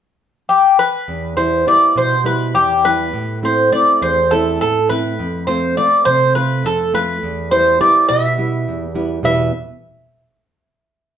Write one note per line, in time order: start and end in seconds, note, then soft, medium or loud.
0.49 0.76 G4 medium
0.79 1.33 B4 medium
1.08 1.65 E2 medium
1.36 1.65 G3 soft
1.36 1.66 B3 soft
1.36 1.66 E4 soft
1.36 1.67 C5 medium
1.66 2.13 G3 soft
1.66 2.13 B3 soft
1.66 2.14 E4 soft
1.66 1.97 D5 medium
1.96 2.53 B2 medium
1.96 2.24 C5 medium
2.24 2.71 G3 soft
2.24 2.72 B3 soft
2.24 2.72 E4 soft
2.24 2.53 B4 medium
2.54 3.11 E2 medium
2.54 2.85 G4 medium
2.85 3.08 G3 soft
2.85 3.08 B3 soft
2.85 3.08 E4 soft
2.85 3.39 B4 medium
3.13 3.70 A2 medium
3.43 3.71 A3 soft
3.43 3.72 C4 soft
3.43 3.72 E4 soft
3.43 3.72 C5 medium
3.72 4.19 A3 soft
3.72 4.19 C4 soft
3.72 4.19 E4 soft
3.72 3.99 D5 medium
4.02 4.58 E2 medium
4.02 4.32 C5 medium
4.31 4.78 A3 soft
4.31 4.78 C4 soft
4.31 4.79 E4 medium
4.31 4.60 A4 medium
4.61 5.17 A2 medium
4.61 4.88 A4 medium
4.89 5.13 A3 soft
4.89 5.13 C4 soft
4.89 5.13 E4 soft
4.89 5.43 B4 medium
5.19 5.75 F2 medium
5.47 5.77 A3 soft
5.47 5.77 C4 soft
5.47 5.78 F4 soft
5.47 5.74 C5 medium
5.77 6.24 A3 soft
5.77 6.24 C4 soft
5.77 6.24 F4 medium
5.77 6.04 D5 medium
6.05 6.62 C3 medium
6.05 6.32 C5 medium
6.35 6.82 A3 soft
6.35 6.82 C4 soft
6.35 6.82 F4 soft
6.35 6.65 B4 medium
6.64 7.20 F2 medium
6.64 6.92 A4 medium
6.94 7.16 A3 soft
6.94 7.16 C4 soft
6.94 7.17 F4 soft
6.94 7.51 B4 medium
7.23 7.78 E2 medium
7.51 7.79 G3 soft
7.51 7.80 B3 soft
7.51 7.80 E4 soft
7.51 7.80 C5 medium
7.80 8.26 G3 soft
7.80 8.27 B3 soft
7.80 8.26 E4 soft
7.80 8.08 D5 medium
8.09 8.65 B2 medium
8.09 8.91 E5 medium
8.38 8.84 G3 soft
8.38 8.84 B3 soft
8.38 8.84 E4 soft
8.68 9.22 E2 medium
8.95 9.18 G3 soft
8.95 9.18 B3 soft
8.95 9.18 E4 soft
9.23 9.50 E2 soft
9.23 9.50 B2 soft
9.23 9.51 G3 soft
9.23 9.50 B3 medium
9.23 9.51 E4 soft
9.23 9.51 B4 medium
9.23 9.51 E5 medium